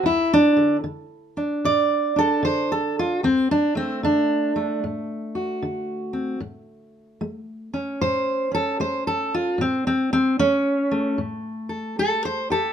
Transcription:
0.03 D2 E4
0.33 D4
0.57 D3
0.84 D3
1.37 D4
1.65 A2 D5
2.16 D4 A4
2.43 D3 C5
2.72 A4
2.99 F4
3.23 D2 C4
3.51 D4
3.75 A3 C4
4.03 D3 D4
4.56 A3
4.84 A2
5.35 F#4
5.62 D3
6.13 C4
6.40 A2
7.21 A3
7.74 C#4
8.01 A2 C5
8.51 C#4 A4
8.80 A3 C5
9.07 A4
9.34 F4
9.58 A2 C4
9.87 C4
10.13 C4
10.39 A3 C#4
10.91 A3
11.18 A2
11.69 A4
11.99 A3 A4
12.25 C5
12.50 G4 A4

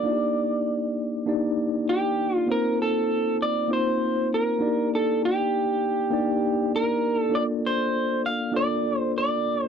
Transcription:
Already playing: D5
0.04 A#3 D4 D#4 F4 D5
0.12 G4
1.26 A#3 D4 D#4 G4 D5
1.89 G4
2.36 F4
2.47 A#3 C4 D#4 F4 C5
2.52 A#4
2.82 A4
3.42 D5
3.68 A#3 C4 D#4 F4 C5
3.73 C5
4.34 A#4
4.59 A#3 D4 D#4 F#4 D5
4.67 G4
4.95 A4
5.25 G4
6.10 A#3 D4 D#4 G4 D5
6.76 A#4
7.19 A4
7.29 A#3 D4 F4 A4 C#5
7.35 D5
7.67 C5
8.26 F5
8.51 A#3 D4 F4 A4 D5
8.56 D5
8.98 C5
9.18 D5
9.64 C5

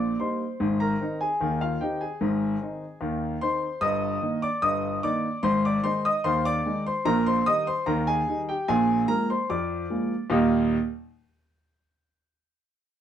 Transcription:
Already playing: A#1 A#2 D5 D6
0.20 G3 A#3 D#4 C5 C6
0.60 G#1 G#2
0.80 A#4 A#5
1.01 D#3 C4 D#4
1.21 G#4 G#5
1.41 D#2 D#3
1.61 F4 F5
1.81 D#3 C4 D#4 G4 G5
2.01 G#4 G#5
2.21 G#1 G#2
2.61 D#3 C4 D#4
3.01 D#2 D#3
3.41 D#3 C4 D#4 C5 C6
3.81 G1 G2 D#5 D#6
4.21 D#3 A#3 D#4
4.42 D5 D6
4.62 G1 G2 D#5 D#6
5.03 D#3 A#3 D#4 D5 D6
5.43 G#1 G#2 C5 C6
5.65 D5 D6
5.84 D#3 G#3 D#4 C5 C6
6.05 D#5 D#6
6.24 D#2 D#3 C5 C6
6.45 D5 D6
6.66 D#3 G#3 D#4
6.86 C5 C6
7.05 A#1 A#2 A#4 A#5
7.26 C5 C6
7.46 D#3 G3 D#4 D#5 D#6
7.67 C5 C6
7.86 D#2 D#3 A#4 A#5
8.07 G#4 G#5
8.27 D#3 G3 D#4
8.49 G4 G5
8.68 A#1 A#2 G#4 G#5
9.08 F3 G#3 A#3 A#4 A#5
9.30 C5 C6
9.50 F2 F3 D5 D6
9.90 F3 G#3 A#3
10.30 D#2 A#2 G3 A#3 D#4 G4 D#6

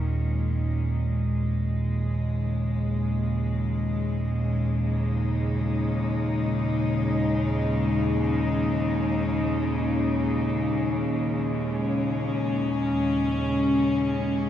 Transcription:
Already playing: D#2 A#2 D#3 G#3 C#4
1.71 D#2
1.93 C#3
4.81 D#4
11.42 C#4

